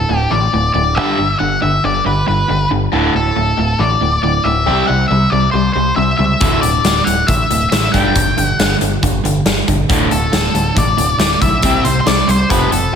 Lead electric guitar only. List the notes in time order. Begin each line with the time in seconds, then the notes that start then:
Already playing: A4
0.18 G4
0.31 D5
0.74 D5
0.95 E5
1.39 F#5
1.62 E5
1.85 D5
2.06 B4
2.28 B4
3.16 A4
3.80 D5
4.23 D5
4.44 E5
4.87 F#5
5.08 E5
5.30 D5
5.51 C5
5.73 C5
5.96 E5
6.18 E5
6.61 D5
7.04 F#5
7.27 E5
7.70 E5
7.92 G5
8.49 F#5
10.12 A4
10.78 D5
11.20 D5
11.42 E5
11.84 C5
12.01 C5
12.07 D5
12.28 C5
12.51 B4
12.72 A4